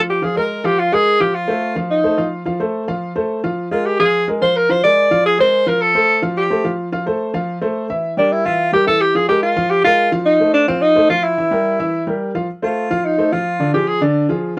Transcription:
Already playing: F3 F4 F5
0.10 G4
0.22 F3 F4 G#4 F5
0.36 G#3 G#4 A#4
0.64 F3 F4 G4 F5
0.79 F4
0.92 G#3 G#4 A#4
1.20 F3 F4 G4 F5
1.35 F4
1.48 A3 A4 C5
1.76 F3 F4 F5
1.90 D#4
2.04 A3 A4 C5
2.18 F3 F4 F5
2.46 F3 F4 F5
2.60 A3 A4 C5
2.88 F3 F4 F5
3.15 A3 A4 C5
3.44 F3 F4 F5
3.71 G#3 F4 G#4 A#4
3.86 G4
3.99 F3 F4 G#4 F5
4.28 G#3 G#4 A#4
4.41 F3 F4 C5 F5
4.56 A#4
4.69 F3 F4 C5 F5
4.83 G#3 G#4 A#4 D5
5.11 F3 F4 F5
5.26 G#4
5.39 G#3 G#4 A#4 C5
5.66 F3 F4 A#4 F5
5.82 A4
5.95 A3 A4 C5
6.22 F3 F4 F5
6.37 G4
6.50 A3 A4 C5
6.64 F3 F4 F5
6.92 F3 F4 F5
7.06 A3 A4 C5
7.34 F3 F4 F5
7.61 A3 A4 C5
7.89 E3 E4 E5
8.17 G3 D4 G4 A#4
8.32 E4
8.45 E3 E4 F4 E5
8.72 G3 G4 A#4
8.86 E3 E4 A4 E5
9.01 G4
9.15 F3 F4 G#4 F5
9.28 G#3 G4 G#4 A#4
9.43 F4
9.56 F3 F4 F5
9.70 G4
9.84 G#3 F4 G#4 A#4
10.12 F3 F4 F5
10.25 D#4
10.40 A3 A4 C5
10.54 D4
10.68 F3 C4 F4 F5
10.81 D#4
10.96 A3 A4 C5
11.09 F3 F4 F5
11.23 E4
11.37 E3 E4 E5
11.51 G3 G4 A#4
11.79 E3 E4 E5
12.07 G3 G4 A#4
12.35 F3 F4 F5
12.62 A3 F4 A4 C5
12.90 F3 F4 F5
13.05 D#4
13.18 A3 A4 C5
13.32 F3 F4 F5
13.60 D3 D4 D5
13.74 F3 F4 G4 G#4
13.88 G#4
14.01 D3 D4 D5
14.29 F3 F4 G#4

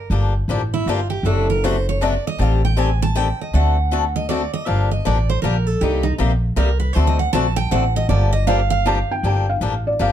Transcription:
0.10 G1 D3 F3 A#3 D4 G4
0.48 A1 D3 F3 A#3 D4 G4
0.74 E4
0.86 G1 D3 F3 A#3 D4 F4 G4
1.10 G4
1.23 F#1 C3 F#3 A3 D4 F#4 A4
1.50 A#4
1.64 C3 F#3 A3 D4 F#4 C5
1.89 C#5
2.01 C3 F#3 A3 D4 F#4 D5
2.27 D#5
2.38 A1 D#3 G3 C4 G4 A4 F5
2.65 G5
2.77 D#3 G3 C4 G4 A4 G#5
3.02 A5
3.15 D#3 G3 C4 G4 A4 G5
3.41 D#5
3.53 D2 D3 A3 C4 F#4 A4 F#5
3.91 D3 A3 C4 F#4 A4
4.16 D#5
4.29 D3 A3 C4 F#4 A4 D5
4.53 D#5
4.66 G1 D3 F3 A#3 D4 G4 F5
4.91 D#5
5.05 A1 D3 F3 A#3 D4 G4 D5
5.30 C5
5.42 A#1 D3 F3 A#3 D4 G4 A#4
5.67 A4
5.81 C2 C3 G3 A#3 D#4 G4
6.03 D#4
6.18 A#1 C3 G3 A#3 D#4 G4
6.56 C2 C3 G3 A#3 D#4 G4 A#4
6.80 B4
6.93 D2 D3 A3 C4 F#4 A4 C5
7.07 D#5
7.19 F#5
7.33 A#1 D3 A3 C4 F#4 A4 A5
7.56 G5
7.71 A1 D3 A3 C4 F#4 A4 F#5
7.96 D#5
8.09 G1 D3 F3 A#3 D4 G4 D5
8.33 D#5
8.47 D3 F3 A#3 D4 G4 F5
8.70 F5
8.86 D3 F3 A#3 D4 G4 A5
9.11 G5
9.23 G1 D3 F3 A#3 D4 G4 G5
9.50 F5
9.61 A1 D3 F3 A#3 D4 G4
9.87 D5
9.99 G1 D3 F3 A#3 D4 G4 F5

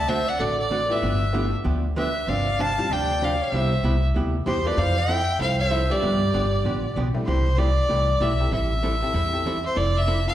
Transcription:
Already playing: D2 A5
0.08 D3 A3 C4 F#4 A4 C5 E5
0.28 D5 F#5
0.39 A1 D3 A3 C4 F#4 A4 D5
0.58 A4 D5
0.71 D3 A3 C4 F#4 A4
0.89 A3 B3 E4 F4 G4 B4 E5
1.02 G1 D3 F3 B3 D4 G4
1.33 D3 F3 A3 B3 D4 E4 F4 G4
1.64 D2 D3 F3 B3 D4 G4
1.96 D3 F3 B3 D4 G4 B4 E5
2.27 G1 C3 F3 C4 D4 G4 D5 F5
2.59 C3 F3 C4 D4 G4 F5 A5
2.78 G3 C4 D4 F4 G4
2.89 D2 C3 F3 C4 D4 G4 D5 G5
3.22 C3 F3 C4 D4 G4 D5 F5
3.43 C5 E5
3.52 C2 C3 G3 B3 E4 G4
3.83 C2 C3 G3 B3 E4 G4
4.14 D2 C3 G3 B3 E4 G4
4.46 E2 C3 G3 B3 E4 G4 C5
4.65 A3 C4 E4 F4 A4 B4 D5
4.77 F2 F3 C4 E4 A4 C5 F5
4.98 E5 G5
5.08 F3 C4 E4 A4
5.39 C2 F3 C4 E4 A4 C5 F5
5.60 C5 E5
5.70 F3 C4 E4 A4
5.90 G3 B3 D4 F4 G4 D5
6.02 G2 D3 F3 B3 D4 G4
6.33 G1 D3 F3 B3 D4 G4
6.64 A1 D3 F3 B3 D4 G4
6.96 B1 D3 F3 B3 D4 G4
7.14 G3 A3 C4 E4 G4
7.26 C2 C3 E3 A3 E4 G4 C5
7.57 C3 E3 A3 E4 G4 D5
7.89 C2 C3 E3 A3 E4 G4
8.20 B1 C3 E3 A3 E4 G4 E5
8.40 C4 E4 G4 A4
8.52 A1 E3 G3 C4 E4 A4 E5
8.83 E3 G3 C4 E4 A4
9.02 C4 E4 G4 A4
9.14 E2 E3 G3 C4 E4 A4
9.33 C4 E4 G4 A4
9.46 E3 G3 C4 E4 A4
9.66 C5
9.75 F1 F3 C4 E4 A4 D5
9.97 E5
10.07 F3 C4 E4 A4
10.27 C4 E4 F4 A4 F5

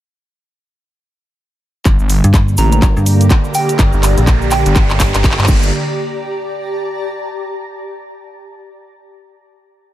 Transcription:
1.85 G1 D3 A#3 G4, kick, clap, closed hi-hat, riser, cabasa
1.98 G1 D5, cabasa
2.09 open hi-hat, cabasa
2.24 G2, closed hi-hat, cabasa
2.30 A#5
2.34 kick, clap, closed hi-hat, cabasa
2.48 cabasa
2.57 A1 A#5, open hi-hat, cabasa
2.72 A#5, closed hi-hat, cabasa
2.82 G1, kick, clap, closed hi-hat, cabasa
2.97 G2, cabasa
3.06 open hi-hat, cabasa
3.21 closed hi-hat, cabasa
3.30 kick, clap, closed hi-hat, cabasa
3.44 cabasa
3.54 G5, open hi-hat, cabasa
3.69 closed hi-hat, cabasa
3.79 G1, kick, clap, closed hi-hat, cabasa
3.93 G1, cabasa
4.03 clap, open hi-hat, cabasa
4.17 A#1, closed hi-hat, cabasa
4.27 kick, clap, closed hi-hat, cabasa
4.42 cabasa
4.51 G5, clap, open hi-hat, cabasa
4.66 G1, closed hi-hat, cabasa
4.75 kick, clap, closed hi-hat, cabasa
4.90 clap, cabasa
5.00 kick, clap, open hi-hat, cabasa
5.14 G1, clap, closed hi-hat, cabasa
5.24 kick, clap, closed hi-hat, cabasa
5.31 clap
5.39 G2, clap, cabasa
5.44 clap
5.48 G1 D3 A#3 G4, kick, crash, cabasa
5.57 D5
5.63 cabasa
5.89 A5
5.95 A#5

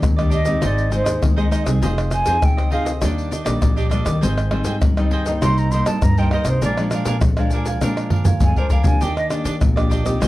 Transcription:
0.02 D#2 A#2, pandeiro, tamborim, shaker, surdo
0.16 G3 A#3 D4 G4 D5 D#5, pandeiro, tamborim, shaker
0.30 D4 G4 D5 D#5, pandeiro, shaker
0.45 G#3 C4 D#4 G4 D5 D#5, pandeiro, shaker
0.61 G#1 G#2 D#4 G#4 C5 D#5, pandeiro, tamborim, shaker, surdo
0.66 D5
0.78 pandeiro, shaker
0.90 G#3 C4 D#4 G#4 C5 D#5, pandeiro, shaker
0.95 C5
1.04 D#2 G#4 C5 D#5, pandeiro, tamborim, shaker
1.22 D#2 D#3, pandeiro, tamborim, shaker, surdo
1.36 G#3 C4 D#4 G#4 C5 D#5, pandeiro, shaker
1.51 D#4 G#4 C5 D#5, pandeiro, tamborim, shaker
1.64 C2 C4 D#4 G#4 C5 D#5, pandeiro, tamborim, shaker
1.82 F1 F3 F4 G#4 C5 D#5, pandeiro, shaker, surdo
1.98 pandeiro, tamborim, shaker
2.10 F4 G#4 C5 D#5 G#5, pandeiro, tamborim, shaker
2.26 F2 C4 D#4 F4 G#4 C5 D#5, pandeiro, shaker
2.42 D2 C3 G5, pandeiro, tamborim, shaker, surdo
2.57 G#4 C5 D#5, pandeiro, tamborim, shaker
2.70 C4 D#4 F4 G#4 C5 D#5 F5, pandeiro
2.85 G#4 C5 D#5, pandeiro, shaker
3.01 D#2 D#3 G3 A#3 D4 G4 D5 D#5, pandeiro, tamborim, shaker, surdo
3.18 pandeiro, shaker
3.31 D4 G4 D5 D#5, pandeiro, shaker
3.44 A#1 G3 A#3 D4 G4 D5 D#5, pandeiro, tamborim, shaker
3.62 A#1 A#2, pandeiro, tamborim, shaker, surdo
3.76 D4 G4 D5 D#5, pandeiro, shaker
3.89 G3 A#3 D4 G4 D5 D#5, pandeiro, tamborim, shaker
4.04 D#3 G4 D5 D#5, pandeiro, tamborim, shaker
4.21 G#1 G#2 G3 C4 D#4 G#4 C5 D#5 G5, pandeiro, shaker, surdo
4.38 pandeiro, tamborim, shaker
4.51 G3 C4 D#4 G#4 C5 D#5 G5, pandeiro, tamborim
4.65 G#2 G#4 C5 D#5 G5, pandeiro, shaker
4.82 G2 D#3, pandeiro, tamborim, shaker, surdo
4.97 G3 C4 D#4 C5 D#5 G5, pandeiro, tamborim, shaker
5.11 G#4 C5 D#5 G5, pandeiro
5.26 G3 A#3 D#4 C5 D#5 G5, pandeiro, shaker
5.42 C2 C3 D#4 A#4 C5 D#5 C6, pandeiro, tamborim, shaker, surdo
5.58 A#5, pandeiro, shaker
5.71 G3 A#3 D#4 A#4 C5 D#5 C6, pandeiro, shaker
5.86 G2 A#4 C5 D#5 A5, pandeiro, tamborim, shaker
6.02 G2 A#5, pandeiro, tamborim, shaker, surdo
6.18 G3 A#3 D#4 A#4 C5 D#5 G5, pandeiro, shaker
6.31 D#4 A#4 C5 D#5, pandeiro, tamborim
6.45 C3 C5 D#5, pandeiro, tamborim, shaker
6.49 A#4 C5
6.62 A#1 A#2 F3 G#3 D4 A#4 D5 F5 G#5, pandeiro, shaker, surdo
6.77 F3 G#3 D4, pandeiro, tamborim, shaker
6.91 F3 G#3 D4 A#4 F5 G#5, pandeiro, tamborim, shaker
7.05 A#2 D4 A#4 F5 G#5, pandeiro, shaker
7.21 A#1 F2, pandeiro, tamborim, shaker, surdo
7.37 F3 G#3 D4 A#4 F5 G#5, pandeiro, tamborim, shaker
7.50 D4 A#4 F5, pandeiro, shaker
7.55 G#5
7.66 A#4 F5 G#5, pandeiro, shaker
7.81 A#2 F3 G#3 D4 A#4 F5 G#5, pandeiro, tamborim, shaker, surdo
7.97 pandeiro, tamborim, shaker
8.10 D4 A#4 F5 G#5, surdo, pandeiro
8.25 F2 A#4 F5 G#5, surdo, pandeiro, shaker
8.40 F2 F3 G#3 D4 G#5, surdo, pandeiro, shaker
8.56 D4 A#4 C5 F5 G#5, pandeiro, shaker, surdo
8.70 D4 A#4 F5 G#5, pandeiro, shaker, surdo
8.83 D2 A#3 D4 G4 A#4 F5 G#5, pandeiro, shaker, surdo
9.01 D#2 D#3 D4 G4 D5 D#5 G5, pandeiro, shaker, surdo
9.17 D#5, pandeiro, tamborim, shaker
9.30 A#3 D4 G4 D5 D#5, pandeiro, tamborim, shaker
9.44 D#3 D4 G4 D5 D#5, pandeiro, shaker
9.61 A#1 A#2, pandeiro, tamborim, shaker, surdo
9.76 A#3 D4 G4 D5 D#5, pandeiro, tamborim, shaker
9.89 D4 G4 D5 D#5, pandeiro, shaker
10.05 C4 D#4 G4 D5 D#5, pandeiro, shaker
10.20 G#1 G#3 G#4 C5 D#5 G5, pandeiro, tamborim, shaker, surdo

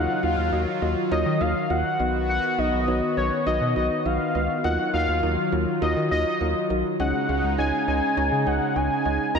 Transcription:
Already playing: D#3 F#3 D#4 F4 F#4 A#4 D#5 F#5
0.23 D#2 D#4 F4 F#4 A#4 F5
0.38 D#2
0.52 D#2 D#4 F4 F#4 A#4 D#5
0.82 D#2 D#4 F4 F#4 A#4 D#5
1.11 D#2 D#4 F4 F#4 A#4 C#5 D#5
1.26 D#3
1.41 D#2 D#4 F4 F#4 A#4 F5
1.70 D#2 D#4 F4 F#4 A#4 D#5 F#5
1.99 B1 B3 D#4 F#4 B4 D#5
2.29 F#5
2.58 B1 B3 D#4 F#4 B4 D#5
2.73 B1
2.88 B1 B3 D#4 F#4 B4 C#5
3.17 B1 B3 D#4 F#4 B4 C#5 D#5
3.46 B1 B3 D#4 F#4 B4 D#5
3.61 B2
3.76 B1 B3 D#4 F#4 B4 D#5
4.05 B1 B3 D#4 F#4 B4 D#5 F5
4.35 C#2 B3 D#4 F#4 B4 D#5
4.64 D#2 F#3 D#4 F4 F#4 A#4 D#5 F#5
4.94 D#2 D#4 F4 F#4 A#4 D#5 F5
5.08 D#2
5.23 D#2 D#4 F4 F#4 A#4 D#5
5.52 D#2 D#4 F4 F#4 A#4 C#5
5.82 D#2 D#4 F4 F#4 A#4 D#5
5.96 D#3
6.11 D#2 D#4 F4 F#4 A#4 D#5
6.41 D#2 D#4 F4 F#4 A#4 D#5
6.70 B1 D#4 F4 F#4 A#4 D#5
6.99 C#2 C#3 G#3 C#4 D#4 G#4 C#5 D#5 F#5
7.29 C#2 C#4 D#4 G#4 C#5 F5
7.44 C#2
7.58 C#2 C#4 D#4 G#4 C#5 D#5 G#5
7.88 C#2 C#4 D#4 G#4 C#5 D#5 G#5
8.17 C#2 C#4 D#4 G#4 C#5 D#5
8.32 C#3
8.47 C#2 C#4 D#4 G#4 C#5 D#5 F#5
8.76 C#2 C#4 D#4 G#4 C#5 D#5 G#5
9.05 C#2 C#4 D#4 G#4 C#5 D#5
9.35 D#2 D#3 F#3 D#4 F4 F#4 A#4 D#5 A#5

